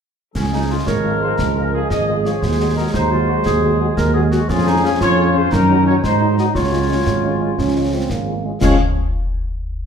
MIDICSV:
0, 0, Header, 1, 8, 480
1, 0, Start_track
1, 0, Key_signature, -5, "major"
1, 0, Tempo, 344234
1, 492, Time_signature, 6, 3, 24, 8
1, 13749, End_track
2, 0, Start_track
2, 0, Title_t, "Trumpet section"
2, 0, Program_c, 0, 61
2, 487, Note_on_c, 0, 68, 69
2, 1161, Note_off_c, 0, 68, 0
2, 1203, Note_on_c, 0, 73, 73
2, 1655, Note_off_c, 0, 73, 0
2, 1692, Note_on_c, 0, 72, 65
2, 1917, Note_off_c, 0, 72, 0
2, 1918, Note_on_c, 0, 70, 73
2, 2373, Note_off_c, 0, 70, 0
2, 2421, Note_on_c, 0, 68, 69
2, 2643, Note_off_c, 0, 68, 0
2, 2643, Note_on_c, 0, 75, 85
2, 3097, Note_off_c, 0, 75, 0
2, 3146, Note_on_c, 0, 73, 67
2, 3370, Note_on_c, 0, 72, 77
2, 3382, Note_off_c, 0, 73, 0
2, 3852, Note_on_c, 0, 70, 78
2, 3855, Note_off_c, 0, 72, 0
2, 3962, Note_off_c, 0, 70, 0
2, 4079, Note_on_c, 0, 72, 85
2, 5955, Note_off_c, 0, 72, 0
2, 6264, Note_on_c, 0, 68, 92
2, 6933, Note_off_c, 0, 68, 0
2, 6978, Note_on_c, 0, 73, 101
2, 7426, Note_off_c, 0, 73, 0
2, 7460, Note_on_c, 0, 72, 88
2, 7693, Note_on_c, 0, 70, 95
2, 7701, Note_off_c, 0, 72, 0
2, 8177, Note_off_c, 0, 70, 0
2, 8181, Note_on_c, 0, 73, 97
2, 8289, Note_off_c, 0, 73, 0
2, 8408, Note_on_c, 0, 72, 88
2, 8860, Note_off_c, 0, 72, 0
2, 8891, Note_on_c, 0, 75, 80
2, 9001, Note_off_c, 0, 75, 0
2, 9133, Note_on_c, 0, 73, 79
2, 11237, Note_off_c, 0, 73, 0
2, 12009, Note_on_c, 0, 73, 75
2, 12212, Note_off_c, 0, 73, 0
2, 13749, End_track
3, 0, Start_track
3, 0, Title_t, "French horn section"
3, 0, Program_c, 1, 60
3, 733, Note_on_c, 1, 65, 45
3, 735, Note_on_c, 1, 56, 47
3, 735, Note_on_c, 1, 68, 46
3, 819, Note_off_c, 1, 65, 0
3, 821, Note_off_c, 1, 56, 0
3, 821, Note_off_c, 1, 68, 0
3, 973, Note_on_c, 1, 65, 47
3, 976, Note_on_c, 1, 56, 44
3, 978, Note_on_c, 1, 68, 45
3, 1060, Note_off_c, 1, 65, 0
3, 1062, Note_off_c, 1, 56, 0
3, 1064, Note_off_c, 1, 68, 0
3, 1457, Note_on_c, 1, 65, 49
3, 1460, Note_on_c, 1, 68, 45
3, 1463, Note_on_c, 1, 56, 49
3, 1543, Note_off_c, 1, 65, 0
3, 1545, Note_off_c, 1, 68, 0
3, 1548, Note_off_c, 1, 56, 0
3, 1683, Note_on_c, 1, 65, 44
3, 1683, Note_on_c, 1, 68, 48
3, 1688, Note_on_c, 1, 56, 48
3, 1772, Note_off_c, 1, 65, 0
3, 1773, Note_off_c, 1, 68, 0
3, 1776, Note_off_c, 1, 56, 0
3, 2176, Note_on_c, 1, 56, 47
3, 2178, Note_on_c, 1, 65, 47
3, 2180, Note_on_c, 1, 68, 46
3, 2263, Note_off_c, 1, 56, 0
3, 2264, Note_off_c, 1, 65, 0
3, 2266, Note_off_c, 1, 68, 0
3, 2432, Note_on_c, 1, 65, 46
3, 2433, Note_on_c, 1, 56, 47
3, 2435, Note_on_c, 1, 68, 46
3, 2515, Note_off_c, 1, 65, 0
3, 2516, Note_off_c, 1, 56, 0
3, 2517, Note_off_c, 1, 68, 0
3, 2903, Note_on_c, 1, 65, 49
3, 2906, Note_on_c, 1, 68, 48
3, 2908, Note_on_c, 1, 56, 47
3, 2988, Note_off_c, 1, 65, 0
3, 2991, Note_off_c, 1, 68, 0
3, 2992, Note_off_c, 1, 56, 0
3, 3125, Note_on_c, 1, 56, 44
3, 3128, Note_on_c, 1, 65, 47
3, 3134, Note_on_c, 1, 68, 47
3, 3215, Note_off_c, 1, 56, 0
3, 3217, Note_off_c, 1, 65, 0
3, 3222, Note_off_c, 1, 68, 0
3, 3610, Note_on_c, 1, 66, 51
3, 3613, Note_on_c, 1, 56, 50
3, 3617, Note_on_c, 1, 68, 51
3, 3698, Note_off_c, 1, 66, 0
3, 3701, Note_off_c, 1, 56, 0
3, 3704, Note_off_c, 1, 68, 0
3, 3848, Note_on_c, 1, 68, 49
3, 3850, Note_on_c, 1, 56, 49
3, 3852, Note_on_c, 1, 66, 50
3, 3937, Note_off_c, 1, 68, 0
3, 3939, Note_off_c, 1, 56, 0
3, 3940, Note_off_c, 1, 66, 0
3, 4329, Note_on_c, 1, 68, 50
3, 4332, Note_on_c, 1, 56, 53
3, 4335, Note_on_c, 1, 66, 49
3, 4418, Note_off_c, 1, 68, 0
3, 4420, Note_off_c, 1, 56, 0
3, 4423, Note_off_c, 1, 66, 0
3, 4570, Note_on_c, 1, 66, 49
3, 4570, Note_on_c, 1, 68, 51
3, 4572, Note_on_c, 1, 56, 51
3, 4659, Note_off_c, 1, 66, 0
3, 4659, Note_off_c, 1, 68, 0
3, 4660, Note_off_c, 1, 56, 0
3, 5063, Note_on_c, 1, 68, 55
3, 5064, Note_on_c, 1, 56, 55
3, 5064, Note_on_c, 1, 66, 52
3, 5149, Note_off_c, 1, 66, 0
3, 5149, Note_off_c, 1, 68, 0
3, 5150, Note_off_c, 1, 56, 0
3, 5299, Note_on_c, 1, 68, 56
3, 5301, Note_on_c, 1, 66, 54
3, 5302, Note_on_c, 1, 56, 55
3, 5386, Note_off_c, 1, 68, 0
3, 5388, Note_off_c, 1, 56, 0
3, 5388, Note_off_c, 1, 66, 0
3, 5767, Note_on_c, 1, 68, 55
3, 5768, Note_on_c, 1, 56, 53
3, 5769, Note_on_c, 1, 66, 59
3, 5857, Note_off_c, 1, 56, 0
3, 5857, Note_off_c, 1, 68, 0
3, 5858, Note_off_c, 1, 66, 0
3, 6020, Note_on_c, 1, 56, 56
3, 6022, Note_on_c, 1, 68, 59
3, 6023, Note_on_c, 1, 66, 56
3, 6107, Note_off_c, 1, 56, 0
3, 6108, Note_off_c, 1, 68, 0
3, 6109, Note_off_c, 1, 66, 0
3, 6510, Note_on_c, 1, 68, 57
3, 6511, Note_on_c, 1, 65, 57
3, 6513, Note_on_c, 1, 61, 57
3, 6594, Note_off_c, 1, 68, 0
3, 6596, Note_off_c, 1, 65, 0
3, 6597, Note_off_c, 1, 61, 0
3, 6733, Note_on_c, 1, 65, 58
3, 6739, Note_on_c, 1, 68, 62
3, 6740, Note_on_c, 1, 61, 58
3, 6821, Note_off_c, 1, 65, 0
3, 6826, Note_off_c, 1, 68, 0
3, 6827, Note_off_c, 1, 61, 0
3, 7210, Note_on_c, 1, 61, 60
3, 7212, Note_on_c, 1, 68, 61
3, 7213, Note_on_c, 1, 65, 61
3, 7299, Note_off_c, 1, 61, 0
3, 7300, Note_off_c, 1, 68, 0
3, 7301, Note_off_c, 1, 65, 0
3, 7451, Note_on_c, 1, 65, 62
3, 7453, Note_on_c, 1, 61, 59
3, 7456, Note_on_c, 1, 68, 59
3, 7539, Note_off_c, 1, 65, 0
3, 7541, Note_off_c, 1, 61, 0
3, 7543, Note_off_c, 1, 68, 0
3, 7927, Note_on_c, 1, 66, 57
3, 7928, Note_on_c, 1, 63, 59
3, 7929, Note_on_c, 1, 61, 57
3, 8017, Note_off_c, 1, 63, 0
3, 8017, Note_off_c, 1, 66, 0
3, 8018, Note_off_c, 1, 61, 0
3, 8175, Note_on_c, 1, 66, 56
3, 8176, Note_on_c, 1, 63, 55
3, 8177, Note_on_c, 1, 61, 57
3, 8262, Note_off_c, 1, 66, 0
3, 8263, Note_off_c, 1, 63, 0
3, 8264, Note_off_c, 1, 61, 0
3, 8652, Note_on_c, 1, 63, 55
3, 8654, Note_on_c, 1, 56, 55
3, 8656, Note_on_c, 1, 66, 53
3, 8740, Note_off_c, 1, 63, 0
3, 8741, Note_off_c, 1, 56, 0
3, 8743, Note_off_c, 1, 66, 0
3, 8896, Note_on_c, 1, 66, 51
3, 8899, Note_on_c, 1, 56, 47
3, 8900, Note_on_c, 1, 63, 49
3, 8984, Note_off_c, 1, 66, 0
3, 8985, Note_off_c, 1, 56, 0
3, 8987, Note_off_c, 1, 63, 0
3, 9368, Note_on_c, 1, 65, 46
3, 9370, Note_on_c, 1, 56, 50
3, 9373, Note_on_c, 1, 61, 47
3, 9457, Note_off_c, 1, 65, 0
3, 9458, Note_off_c, 1, 56, 0
3, 9461, Note_off_c, 1, 61, 0
3, 9605, Note_on_c, 1, 65, 48
3, 9606, Note_on_c, 1, 56, 45
3, 9606, Note_on_c, 1, 61, 47
3, 9694, Note_off_c, 1, 65, 0
3, 9695, Note_off_c, 1, 61, 0
3, 9696, Note_off_c, 1, 56, 0
3, 10093, Note_on_c, 1, 56, 44
3, 10094, Note_on_c, 1, 61, 46
3, 10095, Note_on_c, 1, 65, 46
3, 10181, Note_off_c, 1, 56, 0
3, 10181, Note_off_c, 1, 61, 0
3, 10182, Note_off_c, 1, 65, 0
3, 10324, Note_on_c, 1, 65, 42
3, 10328, Note_on_c, 1, 61, 44
3, 10329, Note_on_c, 1, 56, 42
3, 10414, Note_off_c, 1, 65, 0
3, 10417, Note_off_c, 1, 56, 0
3, 10417, Note_off_c, 1, 61, 0
3, 10807, Note_on_c, 1, 56, 43
3, 10807, Note_on_c, 1, 61, 42
3, 10811, Note_on_c, 1, 65, 43
3, 10896, Note_off_c, 1, 56, 0
3, 10896, Note_off_c, 1, 61, 0
3, 10899, Note_off_c, 1, 65, 0
3, 11041, Note_on_c, 1, 65, 43
3, 11042, Note_on_c, 1, 56, 42
3, 11046, Note_on_c, 1, 61, 43
3, 11131, Note_off_c, 1, 56, 0
3, 11131, Note_off_c, 1, 65, 0
3, 11135, Note_off_c, 1, 61, 0
3, 11525, Note_on_c, 1, 56, 39
3, 11526, Note_on_c, 1, 61, 43
3, 11530, Note_on_c, 1, 65, 42
3, 11614, Note_off_c, 1, 56, 0
3, 11615, Note_off_c, 1, 61, 0
3, 11618, Note_off_c, 1, 65, 0
3, 11768, Note_on_c, 1, 61, 39
3, 11770, Note_on_c, 1, 65, 39
3, 11774, Note_on_c, 1, 56, 40
3, 11856, Note_off_c, 1, 61, 0
3, 11858, Note_off_c, 1, 65, 0
3, 11861, Note_off_c, 1, 56, 0
3, 12008, Note_on_c, 1, 56, 68
3, 12008, Note_on_c, 1, 65, 66
3, 12015, Note_on_c, 1, 61, 69
3, 12211, Note_off_c, 1, 56, 0
3, 12211, Note_off_c, 1, 65, 0
3, 12216, Note_off_c, 1, 61, 0
3, 13749, End_track
4, 0, Start_track
4, 0, Title_t, "Woodwind section"
4, 0, Program_c, 2, 71
4, 498, Note_on_c, 2, 61, 53
4, 605, Note_off_c, 2, 61, 0
4, 746, Note_on_c, 2, 63, 52
4, 963, Note_off_c, 2, 63, 0
4, 975, Note_on_c, 2, 65, 55
4, 1198, Note_off_c, 2, 65, 0
4, 1212, Note_on_c, 2, 70, 74
4, 2600, Note_off_c, 2, 70, 0
4, 2673, Note_on_c, 2, 68, 60
4, 4094, Note_on_c, 2, 63, 63
4, 4108, Note_off_c, 2, 68, 0
4, 4320, Note_off_c, 2, 63, 0
4, 4343, Note_on_c, 2, 65, 60
4, 4575, Note_on_c, 2, 66, 59
4, 4582, Note_off_c, 2, 65, 0
4, 4684, Note_off_c, 2, 66, 0
4, 4819, Note_on_c, 2, 68, 69
4, 5490, Note_off_c, 2, 68, 0
4, 5543, Note_on_c, 2, 70, 76
4, 5765, Note_off_c, 2, 70, 0
4, 5774, Note_on_c, 2, 68, 68
4, 5884, Note_off_c, 2, 68, 0
4, 6016, Note_on_c, 2, 66, 66
4, 6242, Note_off_c, 2, 66, 0
4, 6266, Note_on_c, 2, 65, 74
4, 6504, Note_off_c, 2, 65, 0
4, 6512, Note_on_c, 2, 63, 71
4, 6747, Note_off_c, 2, 63, 0
4, 6755, Note_on_c, 2, 61, 67
4, 6860, Note_off_c, 2, 61, 0
4, 6981, Note_on_c, 2, 65, 78
4, 7651, Note_off_c, 2, 65, 0
4, 7696, Note_on_c, 2, 63, 71
4, 8368, Note_off_c, 2, 63, 0
4, 8430, Note_on_c, 2, 63, 70
4, 9095, Note_off_c, 2, 63, 0
4, 9131, Note_on_c, 2, 65, 61
4, 11596, Note_off_c, 2, 65, 0
4, 12015, Note_on_c, 2, 68, 60
4, 12016, Note_on_c, 2, 77, 60
4, 12216, Note_off_c, 2, 68, 0
4, 12216, Note_off_c, 2, 77, 0
4, 13749, End_track
5, 0, Start_track
5, 0, Title_t, "Euphonium"
5, 0, Program_c, 3, 58
5, 9855, Note_on_c, 3, 56, 56
5, 10526, Note_off_c, 3, 56, 0
5, 10573, Note_on_c, 3, 61, 60
5, 11069, Note_on_c, 3, 60, 57
5, 11090, Note_off_c, 3, 61, 0
5, 11310, Note_on_c, 3, 58, 54
5, 11331, Note_off_c, 3, 60, 0
5, 11789, Note_on_c, 3, 56, 46
5, 11810, Note_off_c, 3, 58, 0
5, 12022, Note_off_c, 3, 56, 0
5, 13749, End_track
6, 0, Start_track
6, 0, Title_t, "Trombone section"
6, 0, Program_c, 4, 61
6, 500, Note_on_c, 4, 56, 55
6, 501, Note_on_c, 4, 53, 56
6, 3326, Note_off_c, 4, 56, 0
6, 3327, Note_off_c, 4, 53, 0
6, 3383, Note_on_c, 4, 54, 60
6, 3390, Note_on_c, 4, 56, 60
6, 6208, Note_off_c, 4, 54, 0
6, 6212, Note_off_c, 4, 56, 0
6, 6253, Note_on_c, 4, 53, 69
6, 6256, Note_on_c, 4, 61, 67
6, 7641, Note_off_c, 4, 53, 0
6, 7696, Note_on_c, 4, 51, 65
6, 8411, Note_on_c, 4, 54, 65
6, 8418, Note_off_c, 4, 51, 0
6, 8418, Note_off_c, 4, 61, 0
6, 8419, Note_on_c, 4, 63, 58
6, 9126, Note_on_c, 4, 61, 57
6, 9139, Note_off_c, 4, 63, 0
6, 10573, Note_off_c, 4, 54, 0
6, 10577, Note_on_c, 4, 53, 49
6, 11769, Note_off_c, 4, 61, 0
6, 11775, Note_off_c, 4, 53, 0
6, 12016, Note_on_c, 4, 53, 62
6, 12020, Note_on_c, 4, 61, 65
6, 12216, Note_off_c, 4, 53, 0
6, 12219, Note_off_c, 4, 61, 0
6, 13749, End_track
7, 0, Start_track
7, 0, Title_t, "Tuba"
7, 0, Program_c, 5, 58
7, 503, Note_on_c, 5, 37, 65
7, 1099, Note_off_c, 5, 37, 0
7, 1224, Note_on_c, 5, 32, 62
7, 1820, Note_off_c, 5, 32, 0
7, 1934, Note_on_c, 5, 37, 61
7, 2536, Note_off_c, 5, 37, 0
7, 2668, Note_on_c, 5, 32, 62
7, 3263, Note_off_c, 5, 32, 0
7, 3386, Note_on_c, 5, 39, 65
7, 3983, Note_off_c, 5, 39, 0
7, 4099, Note_on_c, 5, 39, 66
7, 4700, Note_off_c, 5, 39, 0
7, 4824, Note_on_c, 5, 39, 66
7, 5422, Note_off_c, 5, 39, 0
7, 5547, Note_on_c, 5, 39, 73
7, 6144, Note_off_c, 5, 39, 0
7, 6268, Note_on_c, 5, 41, 81
7, 6865, Note_off_c, 5, 41, 0
7, 6982, Note_on_c, 5, 41, 78
7, 7581, Note_off_c, 5, 41, 0
7, 7704, Note_on_c, 5, 42, 80
7, 8302, Note_off_c, 5, 42, 0
7, 8419, Note_on_c, 5, 44, 71
7, 9019, Note_off_c, 5, 44, 0
7, 9136, Note_on_c, 5, 37, 66
7, 9737, Note_off_c, 5, 37, 0
7, 9860, Note_on_c, 5, 32, 62
7, 10458, Note_off_c, 5, 32, 0
7, 10577, Note_on_c, 5, 37, 58
7, 11176, Note_off_c, 5, 37, 0
7, 11288, Note_on_c, 5, 32, 55
7, 11824, Note_off_c, 5, 32, 0
7, 12005, Note_on_c, 5, 37, 72
7, 12209, Note_off_c, 5, 37, 0
7, 13749, End_track
8, 0, Start_track
8, 0, Title_t, "Drums"
8, 490, Note_on_c, 9, 35, 73
8, 490, Note_on_c, 9, 38, 58
8, 490, Note_on_c, 9, 49, 40
8, 629, Note_off_c, 9, 35, 0
8, 629, Note_off_c, 9, 38, 0
8, 629, Note_off_c, 9, 49, 0
8, 1211, Note_on_c, 9, 35, 70
8, 1211, Note_on_c, 9, 38, 67
8, 1350, Note_off_c, 9, 35, 0
8, 1350, Note_off_c, 9, 38, 0
8, 1934, Note_on_c, 9, 35, 73
8, 1934, Note_on_c, 9, 38, 64
8, 2074, Note_off_c, 9, 35, 0
8, 2074, Note_off_c, 9, 38, 0
8, 2655, Note_on_c, 9, 35, 67
8, 2655, Note_on_c, 9, 38, 65
8, 2794, Note_off_c, 9, 35, 0
8, 2794, Note_off_c, 9, 38, 0
8, 3142, Note_on_c, 9, 38, 48
8, 3281, Note_off_c, 9, 38, 0
8, 3379, Note_on_c, 9, 35, 72
8, 3379, Note_on_c, 9, 38, 55
8, 3519, Note_off_c, 9, 35, 0
8, 3519, Note_off_c, 9, 38, 0
8, 4096, Note_on_c, 9, 35, 67
8, 4096, Note_on_c, 9, 38, 66
8, 4236, Note_off_c, 9, 35, 0
8, 4236, Note_off_c, 9, 38, 0
8, 4823, Note_on_c, 9, 35, 72
8, 4823, Note_on_c, 9, 38, 68
8, 4963, Note_off_c, 9, 35, 0
8, 4963, Note_off_c, 9, 38, 0
8, 5539, Note_on_c, 9, 35, 73
8, 5539, Note_on_c, 9, 38, 70
8, 5679, Note_off_c, 9, 35, 0
8, 5679, Note_off_c, 9, 38, 0
8, 6021, Note_on_c, 9, 38, 54
8, 6160, Note_off_c, 9, 38, 0
8, 6265, Note_on_c, 9, 35, 76
8, 6265, Note_on_c, 9, 38, 59
8, 6265, Note_on_c, 9, 49, 29
8, 6405, Note_off_c, 9, 35, 0
8, 6405, Note_off_c, 9, 38, 0
8, 6405, Note_off_c, 9, 49, 0
8, 6982, Note_on_c, 9, 35, 71
8, 6982, Note_on_c, 9, 38, 74
8, 7122, Note_off_c, 9, 35, 0
8, 7122, Note_off_c, 9, 38, 0
8, 7700, Note_on_c, 9, 35, 76
8, 7700, Note_on_c, 9, 38, 71
8, 7839, Note_off_c, 9, 35, 0
8, 7839, Note_off_c, 9, 38, 0
8, 8418, Note_on_c, 9, 35, 68
8, 8418, Note_on_c, 9, 38, 68
8, 8558, Note_off_c, 9, 35, 0
8, 8558, Note_off_c, 9, 38, 0
8, 8897, Note_on_c, 9, 38, 47
8, 9036, Note_off_c, 9, 38, 0
8, 9133, Note_on_c, 9, 35, 75
8, 9133, Note_on_c, 9, 38, 57
8, 9273, Note_off_c, 9, 35, 0
8, 9273, Note_off_c, 9, 38, 0
8, 9853, Note_on_c, 9, 35, 72
8, 9853, Note_on_c, 9, 38, 65
8, 9992, Note_off_c, 9, 35, 0
8, 9992, Note_off_c, 9, 38, 0
8, 10577, Note_on_c, 9, 35, 71
8, 10577, Note_on_c, 9, 38, 58
8, 10716, Note_off_c, 9, 35, 0
8, 10716, Note_off_c, 9, 38, 0
8, 11290, Note_on_c, 9, 35, 65
8, 11290, Note_on_c, 9, 38, 62
8, 11429, Note_off_c, 9, 35, 0
8, 11429, Note_off_c, 9, 38, 0
8, 12012, Note_on_c, 9, 35, 83
8, 12012, Note_on_c, 9, 38, 84
8, 12012, Note_on_c, 9, 49, 67
8, 12152, Note_off_c, 9, 35, 0
8, 12152, Note_off_c, 9, 38, 0
8, 12152, Note_off_c, 9, 49, 0
8, 13749, End_track
0, 0, End_of_file